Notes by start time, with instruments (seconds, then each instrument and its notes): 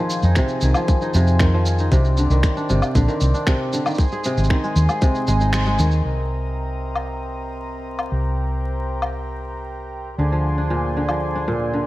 Already playing: kora D#3, accordion F3 C4 G#4
0.00 kora F3
0.10 cabasa
0.22 fingered electric bass F2, kora D#4, cabasa
0.35 kora C3, finger snap, kick, cabasa
0.48 cabasa
0.61 fingered electric bass C2, kora D#3, cabasa
0.74 kora F3, cabasa, low woodblock
0.88 kick, cabasa
1.01 kora D#4, cabasa
1.14 fingered electric bass F2, kora C3, cabasa
1.27 cabasa
1.39 kora D#3, finger snap, kick, cabasa
1.54 kora F3
1.66 cabasa
1.78 kora D#4, cabasa
1.92 fingered electric bass C2, kora C3, accordion C3 C4 D4, kick, cabasa
2.04 cabasa
2.17 kora D3, cabasa
2.30 fingered electric bass C2, kora D#3, cabasa
2.43 finger snap, kick, cabasa
2.57 kora D4, cabasa
2.69 fingered electric bass G1, kora C3, cabasa
2.82 cabasa, low woodblock
2.95 fingered electric bass A#1, kora D3, kick, cabasa
3.08 kora D#3, cabasa
3.20 fingered electric bass C2, cabasa
3.34 kora D4, cabasa
3.47 kora C3, finger snap, kick, cabasa
3.73 kora D3, cabasa
3.86 kora D#3, cabasa, low woodblock
3.90 cabasa
3.94 accordion G#3 G#4 C5 D#5, cabasa
3.98 kick, cabasa
4.03 cabasa
4.07 cabasa
4.12 kora G#4, cabasa
4.24 kora C3, cabasa
4.37 fingered electric bass G#1, cabasa
4.44 cabasa
4.50 kora D#3, finger snap, kick
4.63 kora G#3, cabasa
4.76 fingered electric bass D#2, cabasa
4.89 kora G#4, cabasa, low woodblock
5.01 kora C3, kick, cabasa
5.15 cabasa
5.27 fingered electric bass G#1, kora G#3, cabasa
5.40 kora D#4, cabasa
5.53 kora G#3, finger snap, cabasa
5.66 kora G#3, cabasa
5.79 fingered electric bass D#2, kora D#3, cabasa
5.91 cabasa
6.04 fingered electric bass C2, accordion C3 C4 A#4 D#5
6.95 low woodblock
7.99 low woodblock
8.12 fingered electric bass C2, accordion G4
9.02 low woodblock
10.18 fingered electric bass D2, kora D3, accordion D3 D4 G#4 C5
10.32 kora F3
10.58 kora D4
10.70 kora A#2
10.97 kora D3
11.09 kora F3, low woodblock
11.35 kora D4
11.48 kora A#2
11.74 kora D3